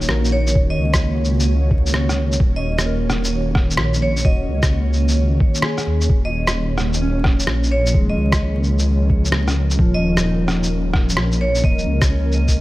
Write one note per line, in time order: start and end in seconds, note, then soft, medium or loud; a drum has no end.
0.00 6.09 D#3 medium
0.00 0.45 A#3 medium
0.00 12.61 A#3 medium
0.00 12.61 C#4 medium
0.00 0.92 D#4 medium
0.00 6.10 F#4 medium
0.00 12.61 C#5 medium
0.00 shaker medium
0.09 0.55 A#1 medium
0.09 1.38 A#4 medium
0.09 cross-stick loud
0.25 shaker soft
0.32 0.57 C#5 medium
0.47 shaker medium
0.55 0.77 D#1 medium
0.55 kick loud
0.70 1.01 D#5 medium
0.79 2.39 C#2 medium
0.94 kick loud
0.94 cross-stick loud
0.94 shaker medium
1.25 shaker soft
1.40 shaker medium
1.71 kick loud
1.86 shaker medium
1.94 3.23 C#5 medium
1.94 cross-stick loud
2.09 cross-stick soft
2.09 shaker soft
2.32 shaker medium
2.40 3.78 D#1 medium
2.40 kick loud
2.56 2.80 D#5 medium
2.79 cross-stick loud
2.79 shaker medium
2.86 4.14 A#4 medium
3.10 cross-stick medium
3.10 shaker soft
3.24 shaker medium
3.55 kick loud
3.55 cross-stick medium
3.71 shaker medium
3.77 4.24 A#1 medium
3.77 cross-stick loud
3.93 shaker soft
4.02 4.24 C#5 medium
4.17 shaker medium
4.25 4.47 D#1 medium
4.25 5.53 F#4 medium
4.25 4.63 D#5 medium
4.25 kick loud
4.48 5.17 C#2 medium
4.63 kick loud
4.63 cross-stick loud
4.63 shaker medium
4.93 shaker soft
5.08 shaker medium
5.18 5.39 C#2 medium
5.40 kick loud
5.55 shaker medium
5.62 6.28 G#4 medium
5.62 cross-stick loud
5.78 cross-stick soft
5.78 shaker soft
5.87 6.09 D#2 medium
6.01 shaker medium
6.10 7.47 D#1 medium
6.10 12.61 F3 medium
6.10 kick loud
6.25 6.49 D#5 medium
6.47 cross-stick loud
6.47 shaker soft
6.78 cross-stick medium
6.78 shaker soft
6.93 shaker medium
7.02 8.30 C#4 medium
7.24 kick loud
7.24 cross-stick medium
7.40 shaker medium
7.47 7.93 A#1 medium
7.47 cross-stick loud
7.57 12.61 A#4 medium
7.63 shaker soft
7.71 7.96 C#5 medium
7.86 shaker medium
7.94 8.16 D#1 loud
7.94 9.23 D#3 medium
7.94 9.23 G#3 medium
7.94 kick loud
8.10 8.40 D#5 medium
8.17 9.78 C#2 medium
8.32 kick loud
8.32 cross-stick medium
8.32 shaker soft
8.64 shaker soft
8.79 shaker medium
9.10 kick loud
9.25 shaker soft
9.32 cross-stick loud
9.48 cross-stick medium
9.48 shaker soft
9.71 shaker medium
9.79 11.17 D#1 loud
9.79 11.08 F3 medium
9.79 kick loud
9.94 10.18 D#5 medium
10.17 cross-stick medium
10.17 shaker medium
10.25 11.53 D#4 medium
10.48 cross-stick medium
10.48 shaker soft
10.63 shaker medium
10.93 kick loud
10.93 cross-stick medium
11.09 shaker medium
11.17 11.63 A#1 medium
11.17 cross-stick loud
11.32 shaker soft
11.41 11.62 C#5 medium
11.55 shaker medium
11.63 11.85 D#1 loud
11.63 12.61 A#3 medium
11.63 12.02 D#5 medium
11.63 kick loud
11.79 shaker soft
11.87 12.55 C#2 medium
12.02 kick loud
12.02 cross-stick loud
12.02 shaker medium
12.10 12.61 C#4 medium
12.32 shaker soft
12.48 kick medium
12.48 shaker medium
12.56 12.61 C#2 medium